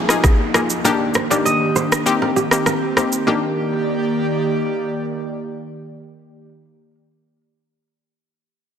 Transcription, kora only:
0.24 0.33 G#4 medium
0.55 0.63 A#4 medium
0.85 0.94 A#4 medium
1.15 1.24 C5 medium
1.31 1.46 D5 medium
1.45 2.52 D#5 medium
1.76 1.85 C5 medium
2.22 2.30 A#4 medium
2.36 2.45 G4 medium
2.67 2.75 A#4 medium
2.97 3.06 C5 medium
3.27 3.46 A#4 medium

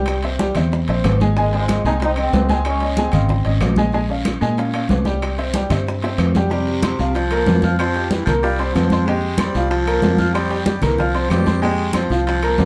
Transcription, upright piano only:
0.00 0.17 G3 medium
0.00 0.17 G4 medium
0.00 0.18 G5 medium
0.23 0.37 C4 medium
0.23 0.37 C5 medium
0.23 0.37 E5 medium
0.39 0.53 G3 medium
0.39 0.53 G4 medium
0.39 0.53 G5 medium
0.56 0.82 C4 medium
0.56 0.82 C5 medium
0.56 0.82 E5 medium
0.89 1.15 C4 medium
0.89 1.15 C5 medium
0.89 1.15 E5 medium
1.21 1.34 G#3 medium
1.21 1.34 G#4 medium
1.21 1.34 G#5 medium
1.38 1.50 G#3 medium
1.38 1.50 G#4 medium
1.38 1.50 G#5 medium
1.53 1.79 C4 medium
1.53 1.79 C5 medium
1.53 1.79 D#5 medium
1.86 1.98 G#3 medium
1.86 1.98 G#4 medium
1.86 1.98 G#5 medium
2.01 2.14 C4 medium
2.01 2.14 C5 medium
2.01 2.15 D#5 medium
2.17 2.43 C4 medium
2.17 2.44 C5 medium
2.17 2.44 D#5 medium
2.49 2.75 G#3 medium
2.49 2.76 G#4 medium
2.49 2.76 G#5 loud
2.81 2.94 C#4 medium
2.81 2.95 C#5 medium
2.81 2.95 D#5 medium
2.97 3.10 G#3 medium
2.97 3.11 G#4 medium
2.97 3.11 G#5 medium
3.13 3.39 C#3 medium
3.13 3.39 D#5 medium
3.13 3.39 F5 medium
3.45 3.71 C#4 medium
3.45 3.71 C#5 medium
3.45 3.72 D#5 medium
3.77 3.91 G#3 medium
3.77 3.91 G#4 medium
3.77 3.91 G#5 medium
3.94 4.07 G#3 medium
3.94 4.07 G#4 medium
3.94 4.07 G#5 medium
4.09 4.36 C#4 medium
4.09 4.36 C#5 medium
4.09 4.36 F5 medium
4.41 4.55 G#3 medium
4.41 4.55 G#4 medium
4.41 4.55 G#5 medium
4.58 4.71 C#4 medium
4.58 4.71 C#5 medium
4.58 4.71 F5 medium
4.73 5.00 C#4 medium
4.73 5.00 C#5 medium
4.73 5.00 F5 medium
5.05 5.32 G3 medium
5.05 5.32 G4 medium
5.05 5.32 G5 medium
5.38 5.51 C4 medium
5.38 5.52 C5 medium
5.38 5.52 E5 medium
5.54 5.67 G3 medium
5.54 5.68 G4 medium
5.54 5.68 G5 medium
5.71 5.97 C4 medium
5.71 5.97 C5 medium
5.71 5.97 E5 medium
6.03 6.29 C4 medium
6.03 6.30 C5 medium
6.03 6.30 E5 medium
6.36 6.49 G3 medium
6.36 6.49 G4 medium
6.36 6.49 G5 medium
6.51 6.77 G3 medium
6.51 6.77 G4 medium
6.51 6.77 G5 medium
6.83 6.96 C4 medium
6.83 6.96 C5 medium
6.83 6.97 C6 medium
6.99 7.25 F3 medium
6.99 7.26 F4 medium
6.99 7.26 F5 medium
7.31 7.57 A#3 medium
7.31 7.58 A#4 medium
7.31 7.58 A#5 medium
7.63 7.76 F4 medium
7.63 7.76 F5 medium
7.63 7.77 F6 medium
7.79 7.92 C4 medium
7.79 7.92 C5 medium
7.79 7.93 C6 medium
7.96 8.22 G4 medium
7.96 8.22 G5 medium
7.96 8.22 G6 medium
8.27 8.40 A#3 medium
8.27 8.41 A#4 medium
8.27 8.40 A#5 medium
8.43 8.56 F4 medium
8.43 8.56 F5 medium
8.43 8.57 F6 medium
8.59 8.85 C4 medium
8.59 8.85 C5 medium
8.59 8.86 C6 medium
8.92 9.05 C4 medium
8.92 9.05 C5 medium
8.92 9.05 C6 medium
9.08 9.34 G#3 medium
9.08 9.34 G4 loud
9.08 9.34 G5 loud
9.39 9.52 C4 medium
9.39 9.52 C5 medium
9.39 9.53 C6 medium
9.55 9.81 F3 medium
9.55 9.82 F4 medium
9.55 9.82 F5 medium
9.87 10.13 A#3 medium
9.87 10.13 A#4 medium
9.87 10.14 A#5 medium
10.18 10.32 F4 medium
10.18 10.32 F5 medium
10.18 10.32 F6 medium
10.35 10.48 C4 medium
10.35 10.48 C5 medium
10.35 10.48 C6 medium
10.50 10.77 G4 medium
10.50 10.77 G5 medium
10.50 10.77 G6 medium
10.82 10.96 A#3 medium
10.82 10.96 A#4 medium
10.82 10.96 A#5 medium
10.98 11.12 F4 medium
10.98 11.12 F5 medium
10.98 11.12 F6 medium
11.14 11.41 C4 medium
11.14 11.41 C5 medium
11.14 11.41 C6 medium
11.46 11.59 C4 medium
11.46 11.60 C5 medium
11.46 11.60 C6 medium
11.62 11.88 G#3 medium
11.62 11.89 G4 medium
11.62 11.89 G5 loud
11.93 12.07 C4 medium
11.93 12.07 C5 medium
11.93 12.08 C6 medium
12.10 12.37 F3 medium
12.10 12.37 F4 medium
12.10 12.37 F5 medium
12.42 12.65 A#3 medium
12.42 12.65 A#4 medium
12.42 12.65 A#5 medium

